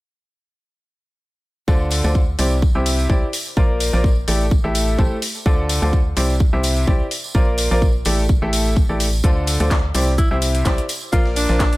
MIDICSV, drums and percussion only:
0, 0, Header, 1, 2, 480
1, 0, Start_track
1, 0, Key_signature, -1, "minor"
1, 0, Tempo, 472441
1, 1706, Time_signature, 4, 2, 24, 8
1, 11959, End_track
2, 0, Start_track
2, 0, Title_t, "Drums"
2, 1705, Note_on_c, 9, 36, 106
2, 1711, Note_on_c, 9, 54, 35
2, 1807, Note_off_c, 9, 36, 0
2, 1812, Note_off_c, 9, 54, 0
2, 1936, Note_on_c, 9, 54, 81
2, 1945, Note_on_c, 9, 46, 94
2, 2038, Note_off_c, 9, 54, 0
2, 2047, Note_off_c, 9, 46, 0
2, 2075, Note_on_c, 9, 54, 51
2, 2176, Note_off_c, 9, 54, 0
2, 2184, Note_on_c, 9, 54, 37
2, 2185, Note_on_c, 9, 36, 100
2, 2286, Note_off_c, 9, 54, 0
2, 2287, Note_off_c, 9, 36, 0
2, 2425, Note_on_c, 9, 46, 109
2, 2425, Note_on_c, 9, 54, 79
2, 2526, Note_off_c, 9, 46, 0
2, 2526, Note_off_c, 9, 54, 0
2, 2551, Note_on_c, 9, 54, 46
2, 2653, Note_off_c, 9, 54, 0
2, 2665, Note_on_c, 9, 36, 112
2, 2672, Note_on_c, 9, 54, 34
2, 2767, Note_off_c, 9, 36, 0
2, 2774, Note_off_c, 9, 54, 0
2, 2905, Note_on_c, 9, 46, 103
2, 2909, Note_on_c, 9, 54, 93
2, 3007, Note_off_c, 9, 46, 0
2, 3010, Note_off_c, 9, 54, 0
2, 3038, Note_on_c, 9, 54, 53
2, 3139, Note_off_c, 9, 54, 0
2, 3142, Note_on_c, 9, 54, 36
2, 3145, Note_on_c, 9, 36, 105
2, 3243, Note_off_c, 9, 54, 0
2, 3247, Note_off_c, 9, 36, 0
2, 3385, Note_on_c, 9, 46, 99
2, 3393, Note_on_c, 9, 54, 96
2, 3487, Note_off_c, 9, 46, 0
2, 3494, Note_off_c, 9, 54, 0
2, 3511, Note_on_c, 9, 54, 48
2, 3613, Note_off_c, 9, 54, 0
2, 3625, Note_on_c, 9, 36, 116
2, 3631, Note_on_c, 9, 54, 41
2, 3727, Note_off_c, 9, 36, 0
2, 3733, Note_off_c, 9, 54, 0
2, 3863, Note_on_c, 9, 54, 87
2, 3865, Note_on_c, 9, 46, 102
2, 3964, Note_off_c, 9, 54, 0
2, 3967, Note_off_c, 9, 46, 0
2, 3995, Note_on_c, 9, 54, 55
2, 4096, Note_off_c, 9, 54, 0
2, 4105, Note_on_c, 9, 36, 108
2, 4120, Note_on_c, 9, 54, 37
2, 4207, Note_off_c, 9, 36, 0
2, 4221, Note_off_c, 9, 54, 0
2, 4345, Note_on_c, 9, 54, 85
2, 4346, Note_on_c, 9, 46, 104
2, 4447, Note_off_c, 9, 46, 0
2, 4447, Note_off_c, 9, 54, 0
2, 4479, Note_on_c, 9, 54, 45
2, 4581, Note_off_c, 9, 54, 0
2, 4585, Note_on_c, 9, 36, 123
2, 4590, Note_on_c, 9, 54, 34
2, 4687, Note_off_c, 9, 36, 0
2, 4692, Note_off_c, 9, 54, 0
2, 4825, Note_on_c, 9, 46, 104
2, 4827, Note_on_c, 9, 54, 91
2, 4927, Note_off_c, 9, 46, 0
2, 4929, Note_off_c, 9, 54, 0
2, 4955, Note_on_c, 9, 54, 52
2, 5057, Note_off_c, 9, 54, 0
2, 5065, Note_on_c, 9, 36, 112
2, 5072, Note_on_c, 9, 54, 38
2, 5167, Note_off_c, 9, 36, 0
2, 5173, Note_off_c, 9, 54, 0
2, 5305, Note_on_c, 9, 46, 110
2, 5305, Note_on_c, 9, 54, 87
2, 5407, Note_off_c, 9, 46, 0
2, 5407, Note_off_c, 9, 54, 0
2, 5432, Note_on_c, 9, 54, 54
2, 5533, Note_off_c, 9, 54, 0
2, 5545, Note_on_c, 9, 36, 116
2, 5647, Note_off_c, 9, 36, 0
2, 5785, Note_on_c, 9, 46, 102
2, 5785, Note_on_c, 9, 54, 101
2, 5887, Note_off_c, 9, 46, 0
2, 5887, Note_off_c, 9, 54, 0
2, 5920, Note_on_c, 9, 54, 53
2, 6022, Note_off_c, 9, 54, 0
2, 6025, Note_on_c, 9, 36, 106
2, 6030, Note_on_c, 9, 54, 37
2, 6127, Note_off_c, 9, 36, 0
2, 6131, Note_off_c, 9, 54, 0
2, 6265, Note_on_c, 9, 46, 107
2, 6267, Note_on_c, 9, 54, 87
2, 6367, Note_off_c, 9, 46, 0
2, 6369, Note_off_c, 9, 54, 0
2, 6397, Note_on_c, 9, 54, 51
2, 6498, Note_off_c, 9, 54, 0
2, 6500, Note_on_c, 9, 54, 39
2, 6505, Note_on_c, 9, 36, 120
2, 6602, Note_off_c, 9, 54, 0
2, 6606, Note_off_c, 9, 36, 0
2, 6739, Note_on_c, 9, 54, 93
2, 6745, Note_on_c, 9, 46, 106
2, 6841, Note_off_c, 9, 54, 0
2, 6847, Note_off_c, 9, 46, 0
2, 6871, Note_on_c, 9, 54, 57
2, 6972, Note_off_c, 9, 54, 0
2, 6981, Note_on_c, 9, 54, 45
2, 6985, Note_on_c, 9, 36, 110
2, 7083, Note_off_c, 9, 54, 0
2, 7086, Note_off_c, 9, 36, 0
2, 7225, Note_on_c, 9, 46, 107
2, 7232, Note_on_c, 9, 54, 83
2, 7327, Note_off_c, 9, 46, 0
2, 7333, Note_off_c, 9, 54, 0
2, 7356, Note_on_c, 9, 54, 57
2, 7458, Note_off_c, 9, 54, 0
2, 7465, Note_on_c, 9, 36, 121
2, 7566, Note_off_c, 9, 36, 0
2, 7698, Note_on_c, 9, 54, 99
2, 7705, Note_on_c, 9, 46, 107
2, 7799, Note_off_c, 9, 54, 0
2, 7807, Note_off_c, 9, 46, 0
2, 7840, Note_on_c, 9, 54, 55
2, 7941, Note_off_c, 9, 54, 0
2, 7945, Note_on_c, 9, 36, 106
2, 7950, Note_on_c, 9, 54, 41
2, 8047, Note_off_c, 9, 36, 0
2, 8052, Note_off_c, 9, 54, 0
2, 8178, Note_on_c, 9, 54, 83
2, 8185, Note_on_c, 9, 46, 109
2, 8280, Note_off_c, 9, 54, 0
2, 8287, Note_off_c, 9, 46, 0
2, 8321, Note_on_c, 9, 54, 51
2, 8421, Note_off_c, 9, 54, 0
2, 8421, Note_on_c, 9, 54, 40
2, 8425, Note_on_c, 9, 36, 124
2, 8522, Note_off_c, 9, 54, 0
2, 8527, Note_off_c, 9, 36, 0
2, 8665, Note_on_c, 9, 46, 107
2, 8672, Note_on_c, 9, 54, 103
2, 8767, Note_off_c, 9, 46, 0
2, 8773, Note_off_c, 9, 54, 0
2, 8793, Note_on_c, 9, 54, 52
2, 8895, Note_off_c, 9, 54, 0
2, 8905, Note_on_c, 9, 36, 109
2, 8911, Note_on_c, 9, 54, 44
2, 9007, Note_off_c, 9, 36, 0
2, 9012, Note_off_c, 9, 54, 0
2, 9145, Note_on_c, 9, 46, 107
2, 9146, Note_on_c, 9, 54, 98
2, 9246, Note_off_c, 9, 46, 0
2, 9248, Note_off_c, 9, 54, 0
2, 9275, Note_on_c, 9, 54, 55
2, 9377, Note_off_c, 9, 54, 0
2, 9384, Note_on_c, 9, 54, 38
2, 9385, Note_on_c, 9, 36, 115
2, 9386, Note_on_c, 9, 82, 88
2, 9485, Note_off_c, 9, 54, 0
2, 9487, Note_off_c, 9, 36, 0
2, 9487, Note_off_c, 9, 82, 0
2, 9625, Note_on_c, 9, 46, 102
2, 9626, Note_on_c, 9, 82, 63
2, 9627, Note_on_c, 9, 54, 95
2, 9727, Note_off_c, 9, 46, 0
2, 9727, Note_off_c, 9, 82, 0
2, 9729, Note_off_c, 9, 54, 0
2, 9751, Note_on_c, 9, 54, 49
2, 9755, Note_on_c, 9, 42, 42
2, 9853, Note_off_c, 9, 54, 0
2, 9857, Note_off_c, 9, 42, 0
2, 9862, Note_on_c, 9, 54, 38
2, 9865, Note_on_c, 9, 36, 99
2, 9866, Note_on_c, 9, 38, 116
2, 9866, Note_on_c, 9, 82, 83
2, 9868, Note_on_c, 9, 39, 115
2, 9964, Note_off_c, 9, 54, 0
2, 9967, Note_off_c, 9, 36, 0
2, 9967, Note_off_c, 9, 38, 0
2, 9967, Note_off_c, 9, 82, 0
2, 9969, Note_off_c, 9, 39, 0
2, 10105, Note_on_c, 9, 46, 108
2, 10105, Note_on_c, 9, 54, 91
2, 10106, Note_on_c, 9, 82, 64
2, 10206, Note_off_c, 9, 46, 0
2, 10206, Note_off_c, 9, 54, 0
2, 10208, Note_off_c, 9, 82, 0
2, 10233, Note_on_c, 9, 54, 50
2, 10335, Note_off_c, 9, 54, 0
2, 10343, Note_on_c, 9, 54, 36
2, 10345, Note_on_c, 9, 36, 120
2, 10346, Note_on_c, 9, 82, 92
2, 10445, Note_off_c, 9, 54, 0
2, 10447, Note_off_c, 9, 36, 0
2, 10448, Note_off_c, 9, 82, 0
2, 10584, Note_on_c, 9, 54, 98
2, 10585, Note_on_c, 9, 46, 104
2, 10586, Note_on_c, 9, 82, 66
2, 10686, Note_off_c, 9, 54, 0
2, 10687, Note_off_c, 9, 46, 0
2, 10688, Note_off_c, 9, 82, 0
2, 10715, Note_on_c, 9, 42, 44
2, 10718, Note_on_c, 9, 54, 48
2, 10817, Note_off_c, 9, 42, 0
2, 10820, Note_off_c, 9, 54, 0
2, 10821, Note_on_c, 9, 54, 39
2, 10825, Note_on_c, 9, 36, 107
2, 10826, Note_on_c, 9, 38, 110
2, 10826, Note_on_c, 9, 82, 90
2, 10828, Note_on_c, 9, 39, 113
2, 10923, Note_off_c, 9, 54, 0
2, 10927, Note_off_c, 9, 36, 0
2, 10927, Note_off_c, 9, 38, 0
2, 10927, Note_off_c, 9, 82, 0
2, 10929, Note_off_c, 9, 39, 0
2, 10955, Note_on_c, 9, 42, 46
2, 11056, Note_off_c, 9, 42, 0
2, 11065, Note_on_c, 9, 46, 99
2, 11065, Note_on_c, 9, 82, 68
2, 11066, Note_on_c, 9, 54, 92
2, 11167, Note_off_c, 9, 46, 0
2, 11167, Note_off_c, 9, 54, 0
2, 11167, Note_off_c, 9, 82, 0
2, 11189, Note_on_c, 9, 54, 50
2, 11291, Note_off_c, 9, 54, 0
2, 11305, Note_on_c, 9, 36, 117
2, 11306, Note_on_c, 9, 82, 87
2, 11311, Note_on_c, 9, 54, 35
2, 11407, Note_off_c, 9, 36, 0
2, 11407, Note_off_c, 9, 82, 0
2, 11412, Note_off_c, 9, 54, 0
2, 11435, Note_on_c, 9, 38, 46
2, 11536, Note_off_c, 9, 38, 0
2, 11545, Note_on_c, 9, 46, 97
2, 11545, Note_on_c, 9, 82, 68
2, 11557, Note_on_c, 9, 54, 87
2, 11647, Note_off_c, 9, 46, 0
2, 11647, Note_off_c, 9, 82, 0
2, 11658, Note_off_c, 9, 54, 0
2, 11675, Note_on_c, 9, 38, 48
2, 11676, Note_on_c, 9, 54, 53
2, 11776, Note_off_c, 9, 38, 0
2, 11778, Note_off_c, 9, 54, 0
2, 11785, Note_on_c, 9, 36, 99
2, 11785, Note_on_c, 9, 38, 116
2, 11785, Note_on_c, 9, 54, 33
2, 11785, Note_on_c, 9, 82, 84
2, 11788, Note_on_c, 9, 39, 111
2, 11886, Note_off_c, 9, 54, 0
2, 11887, Note_off_c, 9, 36, 0
2, 11887, Note_off_c, 9, 38, 0
2, 11887, Note_off_c, 9, 82, 0
2, 11889, Note_off_c, 9, 39, 0
2, 11915, Note_on_c, 9, 42, 49
2, 11959, Note_off_c, 9, 42, 0
2, 11959, End_track
0, 0, End_of_file